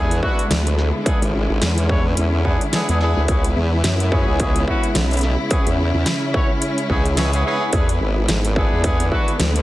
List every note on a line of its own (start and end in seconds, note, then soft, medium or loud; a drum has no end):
0.00 0.21 E2 loud
0.00 3.24 D3 medium
0.00 7.69 G#3 medium
0.00 0.17 B3 medium
0.00 1.02 B3 medium
0.00 0.17 D4 medium
0.00 0.17 E4 medium
0.00 9.62 E4 medium
0.00 0.17 G#4 medium
0.11 closed hi-hat medium
0.23 0.45 B3 medium
0.23 0.45 D4 medium
0.23 0.45 E4 medium
0.23 0.45 F#4 loud
0.23 kick medium
0.39 closed hi-hat soft
0.50 0.92 D2 medium
0.50 snare loud
0.50 closed hi-hat medium
0.67 closed hi-hat medium
0.79 snare soft
1.06 1.21 B3 medium
1.06 3.26 C#4 medium
1.06 1.21 D4 medium
1.06 1.21 E4 medium
1.06 1.21 G#4 medium
1.06 kick loud
1.06 closed hi-hat medium
1.22 1.47 G#1 medium
1.22 closed hi-hat medium
1.50 1.60 G#1 loud
1.62 2.15 E2 medium
1.62 snare loud
1.62 closed hi-hat medium
1.78 closed hi-hat medium
1.89 2.05 B3 medium
1.89 2.05 D4 medium
1.89 2.05 E4 medium
1.89 2.05 C#5 medium
1.89 kick loud
2.17 2.59 E2 loud
2.17 closed hi-hat medium
2.45 2.60 B3 medium
2.45 2.60 D4 medium
2.45 2.60 E4 medium
2.45 2.60 G#4 medium
2.45 kick medium
2.61 closed hi-hat soft
2.73 2.87 B3 medium
2.73 2.87 D4 medium
2.73 2.87 E4 medium
2.73 2.87 G#4 loud
2.73 snare loud
2.73 closed hi-hat medium
2.89 3.14 E2 loud
2.89 2.98 B3 medium
2.89 2.98 D4 medium
2.89 2.98 E4 medium
2.89 2.98 G#4 medium
2.89 closed hi-hat medium
3.00 3.23 B3 loud
3.00 3.23 D4 medium
3.00 3.23 E4 medium
3.00 3.23 G#4 loud
3.00 snare soft
3.17 3.27 D2 loud
3.28 3.54 C#2 medium
3.28 7.69 C#3 medium
3.28 5.48 B3 medium
3.28 3.44 B3 medium
3.28 3.44 C#4 medium
3.28 3.44 E4 medium
3.28 3.44 G#4 medium
3.28 kick loud
3.28 closed hi-hat medium
3.44 closed hi-hat medium
3.56 3.82 E2 medium
3.84 4.25 F#2 medium
3.84 snare loud
3.84 closed hi-hat medium
4.00 closed hi-hat soft
4.12 4.37 B3 medium
4.12 4.37 C#4 medium
4.12 4.37 E4 medium
4.12 4.37 G#4 loud
4.12 kick loud
4.28 4.65 C#2 loud
4.40 4.62 B3 medium
4.40 4.62 C#4 medium
4.40 4.62 E4 medium
4.40 4.62 G#4 medium
4.40 kick loud
4.40 closed hi-hat medium
4.56 closed hi-hat soft
4.68 4.90 B3 medium
4.68 4.90 C#4 medium
4.68 4.90 E4 medium
4.68 4.90 F#4 medium
4.68 kick medium
4.83 closed hi-hat soft
4.95 5.36 B1 medium
4.95 snare loud
4.95 closed hi-hat medium
5.11 closed hi-hat soft
5.13 closed hi-hat soft
5.17 closed hi-hat soft
5.19 closed hi-hat soft
5.21 snare soft
5.21 closed hi-hat soft
5.51 5.66 B3 medium
5.51 7.71 C#4 medium
5.51 5.66 C#4 medium
5.51 5.66 E4 medium
5.51 5.66 G#4 medium
5.51 kick loud
5.51 closed hi-hat medium
5.67 5.92 E2 medium
5.67 closed hi-hat soft
5.94 6.04 E2 loud
6.06 snare loud
6.06 closed hi-hat medium
6.34 6.49 B3 medium
6.34 6.49 C#4 medium
6.34 6.49 E4 medium
6.34 6.49 C#5 medium
6.34 kick loud
6.62 closed hi-hat medium
6.78 closed hi-hat soft
6.90 7.43 C#2 medium
6.90 7.05 B3 medium
6.90 7.05 C#4 medium
6.90 7.05 E4 medium
6.90 7.05 G#4 medium
6.90 kick medium
7.06 closed hi-hat soft
7.17 7.31 B3 medium
7.17 7.31 C#4 medium
7.17 7.31 E4 medium
7.17 7.31 G#4 loud
7.17 snare loud
7.17 closed hi-hat medium
7.33 7.42 B3 medium
7.33 7.42 C#4 medium
7.33 7.42 E4 medium
7.33 7.42 G#4 medium
7.33 closed hi-hat soft
7.45 7.67 B3 loud
7.45 7.67 C#4 medium
7.45 7.67 E4 medium
7.45 7.67 G#4 loud
7.73 7.99 E2 loud
7.73 9.62 D3 medium
7.73 9.62 G#3 medium
7.73 7.88 B3 medium
7.73 9.62 B3 medium
7.73 7.88 D4 medium
7.73 7.88 E4 medium
7.73 7.88 G#4 medium
7.73 kick loud
7.73 closed hi-hat medium
7.89 closed hi-hat medium
8.01 8.27 G#1 loud
8.28 8.70 G#1 medium
8.28 snare loud
8.28 closed hi-hat medium
8.45 closed hi-hat medium
8.56 8.81 B3 medium
8.56 8.81 D4 medium
8.56 8.81 E4 medium
8.56 8.81 G#4 loud
8.56 kick loud
8.73 9.10 E2 loud
8.84 9.06 B3 medium
8.84 9.06 D4 medium
8.84 9.06 E4 medium
8.84 9.06 G#4 medium
8.84 kick loud
8.84 closed hi-hat medium
9.00 closed hi-hat soft
9.12 9.34 B3 medium
9.12 9.34 D4 medium
9.12 9.34 E4 medium
9.12 9.34 F#4 loud
9.12 kick medium
9.28 closed hi-hat soft
9.40 9.62 D2 medium
9.40 snare loud
9.40 closed hi-hat medium
9.56 closed hi-hat medium